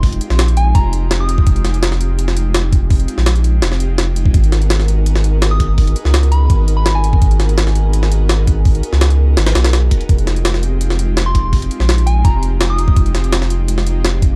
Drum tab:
HH |oxx-xxx-x-x-x-x-|xxxxx-x-x-x-x-x-|oxx-xxx-x-x-x-x-|xxxxx-x-x-x-x-x-|
SD |---oo-------o---|--o-oo---o--o---|---oo---oo--o---|--o-oo---o--o---|
BD |o-------o------o|o-------------o-|o--------------o|o-------------o-|

HH |oxx-xxx-x-x-x-x-|xxxxx-x-x-x-x-x-|oxx-xx--xxxxx-xx|xxxxx-x-x-x-x-x-|
SD |---oo-------o---|--o-oo---o--o---|---oo---ooooo---|--o-oo---o--o---|
BD |o-------o------o|o-------------o-|o-------------o-|o-------------o-|

HH |oxx-xxx-x-x-x-x-|xxxxx-x-x-x-x-x-|
SD |---oo-------o---|--o-oo---o--o---|
BD |o-------o------o|o-------------o-|